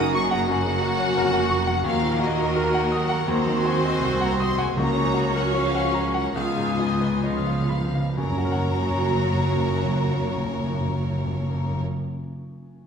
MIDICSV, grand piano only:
0, 0, Header, 1, 2, 480
1, 0, Start_track
1, 0, Key_signature, 6, "major"
1, 0, Tempo, 688863
1, 1287, Time_signature, 4, 2, 24, 8
1, 1782, Tempo, 729040
1, 2742, Tempo, 760456
1, 3702, Tempo, 811908
1, 4182, Tempo, 874636
1, 4662, Tempo, 940439
1, 5142, Tempo, 900901
1, 6582, Tempo, 883652
1, 7670, End_track
2, 0, Start_track
2, 0, Title_t, "Grand piano"
2, 0, Program_c, 0, 0
2, 0, Control_c, 0, 64, 127
2, 0, Note_on_c, 0, 42, 89
2, 0, Note_on_c, 0, 49, 77
2, 0, Note_on_c, 0, 66, 84
2, 0, Note_on_c, 0, 70, 91
2, 0, Note_on_c, 0, 73, 80
2, 0, Note_on_c, 0, 78, 82
2, 101, Note_on_c, 0, 85, 87
2, 167, Note_off_c, 0, 78, 0
2, 216, Note_on_c, 0, 78, 95
2, 290, Note_off_c, 0, 85, 0
2, 305, Note_off_c, 0, 42, 0
2, 341, Note_on_c, 0, 42, 84
2, 407, Note_off_c, 0, 78, 0
2, 457, Note_off_c, 0, 49, 0
2, 457, Note_on_c, 0, 49, 75
2, 566, Note_off_c, 0, 66, 0
2, 566, Note_on_c, 0, 66, 78
2, 644, Note_off_c, 0, 49, 0
2, 691, Note_off_c, 0, 73, 0
2, 691, Note_on_c, 0, 73, 80
2, 758, Note_off_c, 0, 66, 0
2, 797, Note_off_c, 0, 42, 0
2, 818, Note_off_c, 0, 70, 0
2, 818, Note_on_c, 0, 70, 88
2, 880, Note_off_c, 0, 73, 0
2, 929, Note_on_c, 0, 78, 80
2, 1003, Note_off_c, 0, 70, 0
2, 1043, Note_on_c, 0, 85, 91
2, 1119, Note_off_c, 0, 78, 0
2, 1166, Note_on_c, 0, 78, 84
2, 1237, Note_off_c, 0, 85, 0
2, 1285, Note_on_c, 0, 39, 93
2, 1287, Note_off_c, 0, 78, 0
2, 1301, Control_c, 0, 64, 0
2, 1404, Control_c, 0, 64, 127
2, 1404, Note_on_c, 0, 46, 76
2, 1530, Note_on_c, 0, 66, 78
2, 1604, Note_off_c, 0, 46, 0
2, 1648, Note_on_c, 0, 75, 76
2, 1731, Note_off_c, 0, 66, 0
2, 1780, Note_on_c, 0, 70, 88
2, 1850, Note_off_c, 0, 75, 0
2, 1905, Note_on_c, 0, 78, 83
2, 1972, Note_off_c, 0, 70, 0
2, 2021, Note_on_c, 0, 87, 85
2, 2095, Note_off_c, 0, 78, 0
2, 2133, Note_on_c, 0, 78, 94
2, 2213, Note_off_c, 0, 87, 0
2, 2233, Note_off_c, 0, 39, 0
2, 2255, Note_on_c, 0, 39, 93
2, 2257, Note_off_c, 0, 78, 0
2, 2275, Control_c, 0, 64, 0
2, 2378, Control_c, 0, 64, 127
2, 2382, Note_on_c, 0, 51, 74
2, 2503, Note_on_c, 0, 66, 75
2, 2574, Note_off_c, 0, 51, 0
2, 2633, Note_on_c, 0, 75, 77
2, 2695, Note_off_c, 0, 66, 0
2, 2744, Note_on_c, 0, 72, 81
2, 2818, Note_off_c, 0, 75, 0
2, 2864, Note_on_c, 0, 78, 80
2, 2931, Note_off_c, 0, 72, 0
2, 2985, Note_on_c, 0, 87, 83
2, 3051, Note_off_c, 0, 78, 0
2, 3100, Note_on_c, 0, 78, 74
2, 3172, Note_off_c, 0, 87, 0
2, 3187, Note_off_c, 0, 39, 0
2, 3217, Note_off_c, 0, 78, 0
2, 3220, Note_on_c, 0, 37, 77
2, 3228, Control_c, 0, 64, 0
2, 3327, Control_c, 0, 64, 127
2, 3339, Note_on_c, 0, 49, 68
2, 3453, Note_on_c, 0, 66, 73
2, 3531, Note_off_c, 0, 49, 0
2, 3587, Note_on_c, 0, 70, 71
2, 3651, Note_off_c, 0, 66, 0
2, 3706, Note_on_c, 0, 73, 73
2, 3776, Note_off_c, 0, 70, 0
2, 3829, Note_on_c, 0, 78, 66
2, 3892, Note_off_c, 0, 73, 0
2, 3940, Note_on_c, 0, 82, 68
2, 4015, Note_off_c, 0, 78, 0
2, 4060, Note_on_c, 0, 78, 76
2, 4134, Note_off_c, 0, 82, 0
2, 4160, Note_off_c, 0, 37, 0
2, 4183, Note_off_c, 0, 78, 0
2, 4186, Note_on_c, 0, 37, 78
2, 4195, Control_c, 0, 64, 0
2, 4301, Control_c, 0, 64, 127
2, 4305, Note_on_c, 0, 44, 58
2, 4427, Note_on_c, 0, 65, 64
2, 4493, Note_off_c, 0, 44, 0
2, 4545, Note_on_c, 0, 71, 58
2, 4616, Note_off_c, 0, 65, 0
2, 4668, Note_on_c, 0, 75, 67
2, 4734, Note_off_c, 0, 71, 0
2, 4787, Note_on_c, 0, 77, 61
2, 4855, Note_off_c, 0, 75, 0
2, 4901, Note_on_c, 0, 83, 62
2, 4980, Note_off_c, 0, 77, 0
2, 5032, Note_on_c, 0, 77, 60
2, 5095, Note_off_c, 0, 83, 0
2, 5123, Note_off_c, 0, 37, 0
2, 5146, Note_off_c, 0, 77, 0
2, 5146, Note_on_c, 0, 42, 57
2, 5153, Control_c, 0, 64, 0
2, 5184, Note_on_c, 0, 54, 54
2, 5224, Note_on_c, 0, 61, 59
2, 5258, Note_on_c, 0, 66, 59
2, 5288, Control_c, 0, 64, 127
2, 5295, Note_on_c, 0, 70, 59
2, 5331, Note_on_c, 0, 78, 57
2, 7095, Note_off_c, 0, 42, 0
2, 7134, Note_off_c, 0, 54, 0
2, 7175, Note_off_c, 0, 61, 0
2, 7210, Note_off_c, 0, 66, 0
2, 7247, Note_off_c, 0, 70, 0
2, 7284, Note_off_c, 0, 78, 0
2, 7670, End_track
0, 0, End_of_file